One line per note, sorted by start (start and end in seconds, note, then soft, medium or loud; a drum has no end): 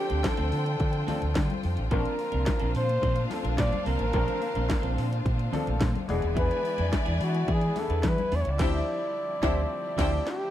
0.00 10.50 D3 medium
0.00 1.08 F3 medium
0.00 1.88 F3 medium
0.00 1.09 A3 medium
0.00 1.09 C4 medium
0.00 1.88 C4 medium
0.00 1.09 D4 medium
0.00 1.88 D4 medium
0.00 6.05 F4 medium
0.00 0.29 G4 loud
0.00 1.10 A4 loud
0.00 1.88 C5 medium
0.00 1.88 G5 loud
0.09 0.22 D2 loud
0.09 0.22 A3 medium
0.09 0.23 C4 medium
0.09 0.23 F4 medium
0.09 0.23 A4 medium
0.09 closed hi-hat medium
0.24 1.37 A4 medium
0.24 kick loud
0.24 snare loud
0.24 closed hi-hat medium
0.24 high conga medium
0.37 0.50 D2 medium
0.37 0.50 A3 medium
0.37 0.51 C4 medium
0.37 0.51 F4 loud
0.37 0.51 A4 medium
0.37 closed hi-hat medium
0.52 0.74 D3 loud
0.52 0.66 A3 medium
0.52 0.65 C4 medium
0.52 0.65 F4 medium
0.52 0.64 A4 medium
0.52 open hi-hat medium
0.65 muted clean electric guitar stroke soft
0.65 closed hi-hat soft
0.80 1.01 D3 loud
0.80 kick loud
0.80 closed hi-hat medium
0.93 muted clean electric guitar stroke soft
0.93 closed hi-hat soft
1.07 1.82 F3 medium
1.07 1.26 A3 medium
1.07 1.82 A3 medium
1.07 1.20 C4 medium
1.07 1.83 C4 medium
1.07 1.83 D4 medium
1.07 1.20 F4 medium
1.07 1.20 A4 medium
1.07 1.83 A4 medium
1.07 snare soft
1.07 open hi-hat medium
1.07 muted conga medium
1.07 low conga medium
1.21 1.33 D2 medium
1.21 muted clean electric guitar stroke soft
1.21 closed hi-hat soft
1.34 1.47 D3 loud
1.34 muted clean electric guitar stroke soft
1.34 kick loud
1.34 snare loud
1.34 closed hi-hat medium
1.34 high conga medium
1.48 muted clean electric guitar stroke medium
1.48 closed hi-hat soft
1.48 high conga medium
1.63 1.75 F2 medium
1.63 open hi-hat medium
1.76 1.89 A1 medium
1.76 muted clean electric guitar stroke soft
1.76 closed hi-hat soft
1.91 2.02 A#1 loud
1.91 2.17 F3 medium
1.91 2.90 F3 medium
1.91 6.05 A#3 medium
1.91 2.90 A#3 medium
1.91 2.17 C4 medium
1.91 6.05 C4 medium
1.91 2.90 C4 medium
1.91 2.17 D4 loud
1.91 6.05 D4 medium
1.91 2.91 D4 medium
1.91 2.17 A4 loud
1.91 2.71 A#4 loud
1.91 2.91 A#4 medium
1.91 6.05 C5 medium
1.91 6.05 F5 medium
1.91 kick loud
1.91 closed hi-hat medium
1.91 muted conga medium
2.05 closed hi-hat soft
2.18 muted clean electric guitar stroke soft
2.18 open hi-hat medium
2.32 2.44 C2 medium
2.32 2.45 F3 medium
2.32 2.45 C4 medium
2.32 2.46 D4 medium
2.32 2.46 A#4 medium
2.32 closed hi-hat soft
2.46 muted clean electric guitar stroke soft
2.46 kick loud
2.46 snare loud
2.46 closed hi-hat medium
2.46 high conga loud
2.60 2.72 A#1 loud
2.60 2.73 F3 medium
2.60 2.74 C4 medium
2.60 2.74 D4 loud
2.60 2.74 A4 medium
2.60 closed hi-hat medium
2.75 2.96 A#2 loud
2.75 2.89 F3 medium
2.75 2.89 C4 medium
2.75 2.88 D4 medium
2.75 2.88 A4 medium
2.75 3.28 C5 loud
2.75 open hi-hat medium
2.89 muted clean electric guitar stroke soft
2.89 closed hi-hat medium
3.01 3.24 A#2 medium
3.01 3.20 F3 medium
3.01 3.16 C4 medium
3.01 3.15 D4 medium
3.01 3.15 A4 loud
3.01 kick loud
3.01 closed hi-hat medium
3.16 muted clean electric guitar stroke soft
3.16 closed hi-hat soft
3.30 4.04 F3 medium
3.30 4.04 A#3 medium
3.30 4.05 C4 medium
3.30 4.05 D4 medium
3.30 4.05 A4 medium
3.30 muted clean electric guitar stroke soft
3.30 snare soft
3.30 open hi-hat medium
3.30 muted conga medium
3.44 3.55 A#1 loud
3.44 3.59 F3 medium
3.44 3.59 C4 medium
3.44 3.59 D4 medium
3.44 3.59 A#4 medium
3.44 closed hi-hat soft
3.58 3.69 A#2 loud
3.58 3.85 D5 loud
3.58 kick loud
3.58 snare loud
3.58 closed hi-hat medium
3.58 high conga medium
3.72 muted clean electric guitar stroke soft
3.72 closed hi-hat soft
3.72 high conga medium
3.86 3.97 C2 medium
3.86 4.04 F3 medium
3.86 4.00 C4 medium
3.86 4.00 D4 medium
3.86 3.99 A4 loud
3.86 4.94 A#4 loud
3.86 open hi-hat medium
3.99 4.11 A1 medium
3.99 muted clean electric guitar stroke medium
3.99 closed hi-hat soft
4.13 4.24 A#1 loud
4.13 4.39 F3 medium
4.13 5.12 F3 medium
4.13 5.12 A#3 medium
4.13 4.40 C4 medium
4.13 5.13 C4 medium
4.13 4.40 D4 loud
4.13 5.13 D4 medium
4.13 4.40 A4 loud
4.13 5.13 A#4 loud
4.13 kick loud
4.13 closed hi-hat medium
4.13 muted conga medium
4.28 closed hi-hat soft
4.41 muted clean electric guitar stroke soft
4.41 open hi-hat medium
4.55 4.67 A#1 medium
4.55 4.68 F3 medium
4.55 4.68 C4 medium
4.55 4.68 D4 medium
4.55 4.68 A4 medium
4.55 closed hi-hat soft
4.69 muted clean electric guitar stroke soft
4.69 kick loud
4.69 snare loud
4.69 closed hi-hat medium
4.69 high conga medium
4.82 4.94 A#1 medium
4.82 4.95 F3 medium
4.82 4.95 C4 medium
4.82 4.96 D4 medium
4.82 4.96 A4 medium
4.82 closed hi-hat medium
4.96 5.19 A#2 loud
4.96 5.11 F3 medium
4.96 5.10 C4 medium
4.96 5.09 D4 medium
4.96 5.09 A4 medium
4.96 open hi-hat medium
5.10 muted clean electric guitar stroke soft
5.10 closed hi-hat medium
5.25 5.46 A#2 loud
5.25 kick loud
5.25 closed hi-hat medium
5.25 muted conga soft
5.38 muted clean electric guitar stroke soft
5.38 closed hi-hat soft
5.52 5.71 F3 medium
5.52 6.08 F3 medium
5.52 6.09 A#3 medium
5.52 5.66 C4 medium
5.52 6.09 C4 medium
5.52 5.66 D4 medium
5.52 6.08 D4 medium
5.52 5.65 A4 medium
5.52 6.09 A4 loud
5.52 snare soft
5.52 open hi-hat medium
5.52 muted conga medium
5.52 low conga medium
5.67 5.78 A#1 loud
5.67 muted clean electric guitar stroke soft
5.67 closed hi-hat soft
5.81 5.91 A#2 loud
5.81 kick loud
5.81 snare loud
5.81 closed hi-hat medium
5.81 high conga medium
5.95 muted clean electric guitar stroke medium
5.95 closed hi-hat soft
5.95 high conga medium
6.08 6.20 E1 loud
6.08 7.07 E3 medium
6.08 8.57 E3 medium
6.08 7.07 G#3 medium
6.08 8.57 G#3 medium
6.08 7.08 B3 medium
6.08 8.57 B3 medium
6.08 7.08 D4 medium
6.08 8.55 E4 medium
6.08 10.50 E4 medium
6.08 7.08 G#4 loud
6.08 8.55 D5 loud
6.08 8.56 G#5 loud
6.08 open hi-hat medium
6.22 6.34 D#1 medium
6.22 muted clean electric guitar stroke medium
6.22 closed hi-hat soft
6.35 6.47 E2 loud
6.35 6.61 E3 medium
6.35 6.62 B3 medium
6.35 6.62 D4 medium
6.35 6.62 G#4 medium
6.35 6.89 B4 loud
6.35 kick loud
6.35 closed hi-hat medium
6.35 muted conga soft
6.51 closed hi-hat soft
6.65 open hi-hat medium
6.78 6.89 F2 medium
6.78 6.90 E3 medium
6.78 6.91 B3 medium
6.78 6.91 D4 medium
6.78 6.92 B4 medium
6.78 closed hi-hat medium
6.91 muted clean electric guitar stroke soft
6.91 kick loud
6.91 snare medium
6.91 closed hi-hat medium
6.91 high conga loud
7.05 7.18 E2 loud
7.05 7.18 E3 medium
7.05 7.18 B3 medium
7.05 7.19 D4 medium
7.05 7.20 G#4 medium
7.05 closed hi-hat medium
7.20 7.34 E3 medium
7.20 7.42 E3 loud
7.20 7.34 B3 medium
7.20 7.33 D4 medium
7.20 7.53 F#4 loud
7.20 7.33 G#4 medium
7.20 open hi-hat medium
7.34 muted clean electric guitar stroke soft
7.34 closed hi-hat soft
7.47 7.66 E3 medium
7.47 7.69 E3 loud
7.47 7.61 B3 medium
7.47 7.61 D4 medium
7.47 7.61 G#4 loud
7.47 kick loud
7.47 closed hi-hat medium
7.47 muted conga soft
7.52 7.81 G#4 loud
7.61 muted clean electric guitar stroke soft
7.61 closed hi-hat soft
7.76 8.50 E3 medium
7.76 8.50 G#3 medium
7.76 8.50 B3 medium
7.76 8.50 D4 medium
7.76 8.51 G#4 medium
7.76 8.10 A4 loud
7.76 muted clean electric guitar stroke soft
7.76 snare soft
7.76 open hi-hat medium
7.76 muted conga medium
7.90 8.00 E2 loud
7.90 8.05 E3 medium
7.90 8.05 B3 medium
7.90 8.04 D4 medium
7.90 8.04 B4 medium
7.90 closed hi-hat medium
8.03 8.14 E3 loud
8.03 kick loud
8.03 snare loud
8.03 closed hi-hat medium
8.03 high conga medium
8.08 8.37 B4 loud
8.18 muted clean electric guitar stroke soft
8.18 closed hi-hat soft
8.18 high conga medium
8.32 8.42 E2 medium
8.32 8.50 E3 loud
8.32 8.46 B3 loud
8.32 8.46 D4 loud
8.32 8.45 G#4 loud
8.32 8.43 D5 loud
8.32 open hi-hat medium
8.41 8.52 C#5 loud
8.41 closed hi-hat medium
8.46 8.57 C#2 medium
8.46 muted clean electric guitar stroke soft
8.51 10.29 D5 loud
8.58 8.78 D2 loud
8.58 10.50 F3 medium
8.58 8.78 F3 loud
8.58 8.79 F3 loud
8.58 10.50 G3 medium
8.58 10.50 C4 medium
8.58 8.78 C4 loud
8.58 8.79 C4 loud
8.58 8.79 D4 loud
8.58 8.78 E4 loud
8.58 8.79 E4 loud
8.58 8.78 G4 loud
8.58 8.80 G4 loud
8.58 8.78 C5 loud
8.58 8.79 G5 loud
8.58 kick loud
8.58 snare loud
8.58 crash medium
9.43 9.62 D2 loud
9.43 9.62 F3 loud
9.43 9.62 C4 loud
9.43 9.62 D4 loud
9.43 9.62 E4 loud
9.43 9.62 G4 medium
9.43 9.63 G4 loud
9.43 9.62 C5 loud
9.43 9.62 G5 medium
9.43 kick loud
9.43 snare loud
9.97 10.17 D2 loud
9.97 10.16 F3 medium
9.97 10.17 F3 loud
9.97 10.17 C4 loud
9.97 10.18 C4 loud
9.97 10.18 D4 loud
9.97 10.17 E4 loud
9.97 10.17 E4 medium
9.97 10.18 E4 medium
9.97 10.17 G4 loud
9.97 10.18 G4 medium
9.97 10.17 C5 loud
9.97 10.17 G5 loud
9.97 kick loud
9.97 snare loud
9.97 crash medium
10.27 10.50 G4 loud
10.27 snare medium